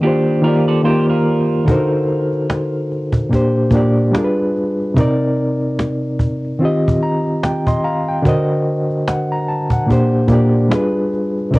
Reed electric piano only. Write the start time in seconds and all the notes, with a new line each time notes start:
0.01 D#3 A#3 F4
0.05 G4 C5
0.42 D#3 A#3 F4
0.47 G4 D5
0.83 D#3 A#3 F4
0.88 G4 A#4
1.65 D3 D#4 F#4 A4
1.70 A#4 C5
3.30 A#2 A#3 D4
3.34 G4 C5
3.71 A#2 A#3 D4
3.76 G4 D5
4.12 G3 D4 F4
4.16 G#4 A#4
4.24 B4
4.94 C3 C4 D#4
4.99 A#4 D5
6.58 D#3 C4 F4
6.63 G4 D#5
7.02 A#5
7.43 G5
7.67 D#5 C6
7.84 F5 A#5
8.08 G5
8.22 D3 D4 F#4 A#4
8.27 C5 D#5
9.08 F#5
9.32 A#5
9.49 A5
9.73 F#5
9.87 A#2 A#3 D4
9.91 G4 C5
10.28 A#2 A#3 D4
10.32 G4 D5
10.69 G3 D4 F4
10.73 G#4 B4
11.51 C3 C4 D4
11.55 A#4